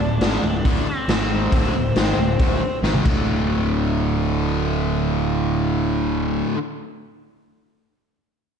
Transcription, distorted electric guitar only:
0, 0, Header, 1, 2, 480
1, 0, Start_track
1, 0, Tempo, 436999
1, 1670, Time_signature, 4, 2, 24, 8
1, 9436, End_track
2, 0, Start_track
2, 0, Title_t, "Distorted electric guitar"
2, 0, Program_c, 0, 30
2, 8, Note_on_c, 0, 38, 68
2, 13, Note_on_c, 0, 45, 74
2, 192, Note_off_c, 0, 38, 0
2, 195, Note_off_c, 0, 45, 0
2, 239, Note_on_c, 0, 44, 77
2, 254, Note_on_c, 0, 51, 83
2, 257, Note_on_c, 0, 56, 89
2, 468, Note_off_c, 0, 44, 0
2, 476, Note_off_c, 0, 51, 0
2, 477, Note_off_c, 0, 56, 0
2, 485, Note_on_c, 0, 38, 56
2, 485, Note_on_c, 0, 45, 72
2, 670, Note_off_c, 0, 38, 0
2, 670, Note_off_c, 0, 45, 0
2, 713, Note_on_c, 0, 38, 98
2, 724, Note_on_c, 0, 45, 94
2, 730, Note_on_c, 0, 50, 99
2, 945, Note_off_c, 0, 38, 0
2, 950, Note_off_c, 0, 45, 0
2, 953, Note_off_c, 0, 50, 0
2, 1200, Note_on_c, 0, 44, 88
2, 1206, Note_on_c, 0, 51, 102
2, 1210, Note_on_c, 0, 56, 103
2, 1667, Note_off_c, 0, 44, 0
2, 1670, Note_off_c, 0, 51, 0
2, 1673, Note_off_c, 0, 56, 0
2, 1678, Note_on_c, 0, 38, 88
2, 1686, Note_on_c, 0, 45, 102
2, 1698, Note_on_c, 0, 50, 99
2, 1906, Note_off_c, 0, 38, 0
2, 1911, Note_off_c, 0, 45, 0
2, 1916, Note_off_c, 0, 50, 0
2, 1917, Note_on_c, 0, 38, 58
2, 1922, Note_on_c, 0, 45, 68
2, 2105, Note_off_c, 0, 38, 0
2, 2108, Note_off_c, 0, 45, 0
2, 2151, Note_on_c, 0, 44, 77
2, 2168, Note_on_c, 0, 51, 77
2, 2169, Note_on_c, 0, 56, 76
2, 2383, Note_off_c, 0, 44, 0
2, 2391, Note_off_c, 0, 51, 0
2, 2392, Note_off_c, 0, 56, 0
2, 2403, Note_on_c, 0, 38, 57
2, 2412, Note_on_c, 0, 45, 64
2, 2588, Note_off_c, 0, 38, 0
2, 2592, Note_off_c, 0, 45, 0
2, 2642, Note_on_c, 0, 38, 92
2, 2646, Note_on_c, 0, 45, 93
2, 2655, Note_on_c, 0, 50, 102
2, 2868, Note_off_c, 0, 38, 0
2, 2870, Note_off_c, 0, 45, 0
2, 2875, Note_off_c, 0, 50, 0
2, 3113, Note_on_c, 0, 44, 84
2, 3119, Note_on_c, 0, 51, 94
2, 3132, Note_on_c, 0, 56, 103
2, 3339, Note_off_c, 0, 44, 0
2, 3344, Note_on_c, 0, 38, 84
2, 3354, Note_off_c, 0, 51, 0
2, 3360, Note_off_c, 0, 56, 0
2, 3363, Note_on_c, 0, 45, 91
2, 3387, Note_on_c, 0, 50, 88
2, 7188, Note_off_c, 0, 38, 0
2, 7207, Note_off_c, 0, 45, 0
2, 7232, Note_off_c, 0, 50, 0
2, 9436, End_track
0, 0, End_of_file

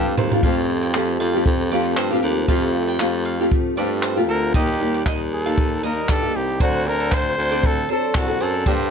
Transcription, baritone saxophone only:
0, 0, Header, 1, 2, 480
1, 0, Start_track
1, 0, Tempo, 514580
1, 400, Time_signature, 4, 2, 24, 8
1, 8307, End_track
2, 0, Start_track
2, 0, Title_t, "Baritone saxophone"
2, 0, Program_c, 0, 67
2, 0, Note_on_c, 0, 43, 99
2, 143, Note_off_c, 0, 43, 0
2, 160, Note_on_c, 0, 39, 89
2, 380, Note_off_c, 0, 39, 0
2, 401, Note_on_c, 0, 41, 106
2, 1083, Note_off_c, 0, 41, 0
2, 1115, Note_on_c, 0, 41, 92
2, 1337, Note_off_c, 0, 41, 0
2, 1360, Note_on_c, 0, 41, 100
2, 1802, Note_off_c, 0, 41, 0
2, 1840, Note_on_c, 0, 43, 80
2, 2060, Note_off_c, 0, 43, 0
2, 2079, Note_on_c, 0, 39, 91
2, 2300, Note_off_c, 0, 39, 0
2, 2317, Note_on_c, 0, 41, 93
2, 2760, Note_off_c, 0, 41, 0
2, 2802, Note_on_c, 0, 41, 92
2, 3248, Note_off_c, 0, 41, 0
2, 3521, Note_on_c, 0, 43, 79
2, 4002, Note_on_c, 0, 38, 70
2, 4016, Note_off_c, 0, 43, 0
2, 4221, Note_off_c, 0, 38, 0
2, 4236, Note_on_c, 0, 39, 93
2, 4681, Note_off_c, 0, 39, 0
2, 4720, Note_on_c, 0, 39, 83
2, 5644, Note_off_c, 0, 39, 0
2, 5680, Note_on_c, 0, 43, 69
2, 5902, Note_off_c, 0, 43, 0
2, 5921, Note_on_c, 0, 36, 75
2, 6142, Note_off_c, 0, 36, 0
2, 6160, Note_on_c, 0, 38, 91
2, 6845, Note_off_c, 0, 38, 0
2, 6881, Note_on_c, 0, 38, 88
2, 7329, Note_off_c, 0, 38, 0
2, 7601, Note_on_c, 0, 36, 78
2, 7823, Note_off_c, 0, 36, 0
2, 7842, Note_on_c, 0, 42, 91
2, 8063, Note_off_c, 0, 42, 0
2, 8080, Note_on_c, 0, 43, 98
2, 8307, Note_off_c, 0, 43, 0
2, 8307, End_track
0, 0, End_of_file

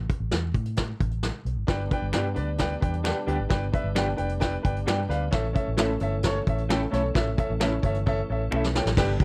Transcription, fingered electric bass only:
0, 0, Header, 1, 2, 480
1, 0, Start_track
1, 0, Tempo, 454545
1, 1786, Time_signature, 4, 2, 24, 8
1, 9761, End_track
2, 0, Start_track
2, 0, Title_t, "Fingered electric bass"
2, 0, Program_c, 0, 33
2, 212, Note_on_c, 0, 33, 94
2, 317, Note_off_c, 0, 33, 0
2, 335, Note_on_c, 0, 40, 91
2, 537, Note_off_c, 0, 40, 0
2, 572, Note_on_c, 0, 45, 95
2, 975, Note_off_c, 0, 45, 0
2, 1065, Note_on_c, 0, 33, 88
2, 1363, Note_off_c, 0, 33, 0
2, 1532, Note_on_c, 0, 35, 84
2, 1637, Note_off_c, 0, 35, 0
2, 1652, Note_on_c, 0, 32, 70
2, 1757, Note_off_c, 0, 32, 0
2, 1777, Note_on_c, 0, 31, 102
2, 1979, Note_off_c, 0, 31, 0
2, 2133, Note_on_c, 0, 31, 88
2, 2238, Note_off_c, 0, 31, 0
2, 2257, Note_on_c, 0, 43, 89
2, 2499, Note_on_c, 0, 38, 92
2, 2515, Note_off_c, 0, 43, 0
2, 2900, Note_off_c, 0, 38, 0
2, 2984, Note_on_c, 0, 40, 90
2, 3284, Note_off_c, 0, 40, 0
2, 3457, Note_on_c, 0, 38, 79
2, 3561, Note_off_c, 0, 38, 0
2, 3584, Note_on_c, 0, 32, 76
2, 3685, Note_off_c, 0, 32, 0
2, 3700, Note_on_c, 0, 31, 93
2, 3902, Note_off_c, 0, 31, 0
2, 4055, Note_on_c, 0, 31, 89
2, 4359, Note_off_c, 0, 31, 0
2, 4423, Note_on_c, 0, 29, 92
2, 4823, Note_off_c, 0, 29, 0
2, 4910, Note_on_c, 0, 31, 84
2, 5108, Note_off_c, 0, 31, 0
2, 5146, Note_on_c, 0, 43, 96
2, 5346, Note_off_c, 0, 43, 0
2, 5376, Note_on_c, 0, 38, 82
2, 5580, Note_off_c, 0, 38, 0
2, 5629, Note_on_c, 0, 33, 106
2, 5828, Note_off_c, 0, 33, 0
2, 5993, Note_on_c, 0, 33, 94
2, 6290, Note_off_c, 0, 33, 0
2, 6345, Note_on_c, 0, 31, 99
2, 6744, Note_off_c, 0, 31, 0
2, 6838, Note_on_c, 0, 33, 87
2, 7232, Note_off_c, 0, 33, 0
2, 7315, Note_on_c, 0, 35, 87
2, 7511, Note_off_c, 0, 35, 0
2, 7551, Note_on_c, 0, 33, 99
2, 7749, Note_off_c, 0, 33, 0
2, 7920, Note_on_c, 0, 33, 107
2, 8213, Note_off_c, 0, 33, 0
2, 8273, Note_on_c, 0, 31, 93
2, 8668, Note_off_c, 0, 31, 0
2, 8763, Note_on_c, 0, 33, 81
2, 8956, Note_off_c, 0, 33, 0
2, 9001, Note_on_c, 0, 35, 90
2, 9293, Note_off_c, 0, 35, 0
2, 9351, Note_on_c, 0, 33, 84
2, 9448, Note_off_c, 0, 33, 0
2, 9476, Note_on_c, 0, 31, 101
2, 9670, Note_off_c, 0, 31, 0
2, 9716, Note_on_c, 0, 38, 100
2, 9761, Note_off_c, 0, 38, 0
2, 9761, End_track
0, 0, End_of_file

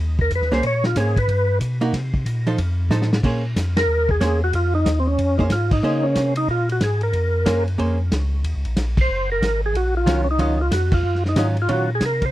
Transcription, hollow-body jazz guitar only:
0, 0, Header, 1, 2, 480
1, 0, Start_track
1, 0, Key_signature, -5, "minor"
1, 0, Tempo, 325203
1, 940, Time_signature, 4, 2, 24, 8
1, 18177, End_track
2, 0, Start_track
2, 0, Title_t, "Hollow-body jazz guitar"
2, 0, Program_c, 0, 26
2, 763, Note_on_c, 0, 58, 80
2, 768, Note_on_c, 0, 61, 70
2, 777, Note_on_c, 0, 68, 72
2, 789, Note_on_c, 0, 72, 82
2, 923, Note_off_c, 0, 58, 0
2, 925, Note_off_c, 0, 61, 0
2, 930, Note_off_c, 0, 68, 0
2, 936, Note_off_c, 0, 72, 0
2, 1431, Note_on_c, 0, 61, 56
2, 1432, Note_on_c, 0, 58, 54
2, 1434, Note_on_c, 0, 68, 63
2, 1441, Note_on_c, 0, 72, 60
2, 1698, Note_off_c, 0, 61, 0
2, 1699, Note_off_c, 0, 58, 0
2, 1699, Note_off_c, 0, 68, 0
2, 1703, Note_off_c, 0, 72, 0
2, 2674, Note_on_c, 0, 58, 74
2, 2684, Note_on_c, 0, 63, 76
2, 2695, Note_on_c, 0, 66, 84
2, 2838, Note_off_c, 0, 58, 0
2, 2843, Note_off_c, 0, 63, 0
2, 2849, Note_off_c, 0, 66, 0
2, 3640, Note_on_c, 0, 53, 69
2, 3647, Note_on_c, 0, 63, 67
2, 3656, Note_on_c, 0, 69, 70
2, 3659, Note_on_c, 0, 72, 73
2, 3801, Note_off_c, 0, 53, 0
2, 3805, Note_off_c, 0, 63, 0
2, 3809, Note_off_c, 0, 69, 0
2, 3810, Note_off_c, 0, 72, 0
2, 4290, Note_on_c, 0, 53, 67
2, 4293, Note_on_c, 0, 63, 71
2, 4301, Note_on_c, 0, 69, 70
2, 4307, Note_on_c, 0, 72, 63
2, 4567, Note_off_c, 0, 53, 0
2, 4569, Note_off_c, 0, 63, 0
2, 4573, Note_off_c, 0, 69, 0
2, 4576, Note_off_c, 0, 72, 0
2, 4783, Note_on_c, 0, 58, 60
2, 4791, Note_on_c, 0, 61, 56
2, 4803, Note_on_c, 0, 68, 61
2, 4805, Note_on_c, 0, 72, 60
2, 5054, Note_off_c, 0, 58, 0
2, 5058, Note_off_c, 0, 61, 0
2, 5064, Note_off_c, 0, 68, 0
2, 5065, Note_off_c, 0, 72, 0
2, 6209, Note_on_c, 0, 58, 62
2, 6212, Note_on_c, 0, 61, 67
2, 6227, Note_on_c, 0, 68, 66
2, 6228, Note_on_c, 0, 72, 74
2, 6487, Note_off_c, 0, 58, 0
2, 6489, Note_off_c, 0, 61, 0
2, 6497, Note_off_c, 0, 68, 0
2, 6497, Note_off_c, 0, 72, 0
2, 7954, Note_on_c, 0, 58, 68
2, 7967, Note_on_c, 0, 61, 70
2, 7967, Note_on_c, 0, 68, 65
2, 7976, Note_on_c, 0, 72, 76
2, 8119, Note_off_c, 0, 58, 0
2, 8125, Note_off_c, 0, 68, 0
2, 8126, Note_off_c, 0, 61, 0
2, 8130, Note_off_c, 0, 72, 0
2, 8608, Note_on_c, 0, 58, 65
2, 8621, Note_on_c, 0, 61, 73
2, 8624, Note_on_c, 0, 68, 74
2, 8628, Note_on_c, 0, 72, 77
2, 9337, Note_off_c, 0, 58, 0
2, 9344, Note_off_c, 0, 61, 0
2, 9345, Note_off_c, 0, 68, 0
2, 9348, Note_off_c, 0, 72, 0
2, 11008, Note_on_c, 0, 58, 56
2, 11009, Note_on_c, 0, 61, 59
2, 11013, Note_on_c, 0, 68, 58
2, 11020, Note_on_c, 0, 72, 69
2, 11288, Note_off_c, 0, 58, 0
2, 11288, Note_off_c, 0, 61, 0
2, 11290, Note_off_c, 0, 68, 0
2, 11294, Note_off_c, 0, 72, 0
2, 11486, Note_on_c, 0, 58, 60
2, 11493, Note_on_c, 0, 68, 62
2, 11498, Note_on_c, 0, 61, 59
2, 11508, Note_on_c, 0, 72, 72
2, 11767, Note_off_c, 0, 58, 0
2, 11770, Note_off_c, 0, 68, 0
2, 11773, Note_off_c, 0, 61, 0
2, 11778, Note_off_c, 0, 72, 0
2, 14853, Note_on_c, 0, 51, 65
2, 14857, Note_on_c, 0, 54, 62
2, 14861, Note_on_c, 0, 65, 63
2, 14868, Note_on_c, 0, 61, 69
2, 15130, Note_off_c, 0, 51, 0
2, 15132, Note_off_c, 0, 54, 0
2, 15134, Note_off_c, 0, 65, 0
2, 15138, Note_off_c, 0, 61, 0
2, 15330, Note_on_c, 0, 51, 67
2, 15332, Note_on_c, 0, 54, 66
2, 15340, Note_on_c, 0, 65, 71
2, 15342, Note_on_c, 0, 61, 72
2, 15609, Note_off_c, 0, 51, 0
2, 15610, Note_off_c, 0, 54, 0
2, 15614, Note_off_c, 0, 65, 0
2, 15615, Note_off_c, 0, 61, 0
2, 16775, Note_on_c, 0, 51, 66
2, 16779, Note_on_c, 0, 54, 61
2, 16782, Note_on_c, 0, 61, 62
2, 16794, Note_on_c, 0, 65, 70
2, 17051, Note_off_c, 0, 51, 0
2, 17053, Note_off_c, 0, 54, 0
2, 17054, Note_off_c, 0, 61, 0
2, 17061, Note_off_c, 0, 65, 0
2, 17250, Note_on_c, 0, 54, 62
2, 17252, Note_on_c, 0, 51, 65
2, 17255, Note_on_c, 0, 61, 64
2, 17261, Note_on_c, 0, 65, 72
2, 17528, Note_off_c, 0, 54, 0
2, 17530, Note_off_c, 0, 51, 0
2, 17531, Note_off_c, 0, 61, 0
2, 17534, Note_off_c, 0, 65, 0
2, 18177, End_track
0, 0, End_of_file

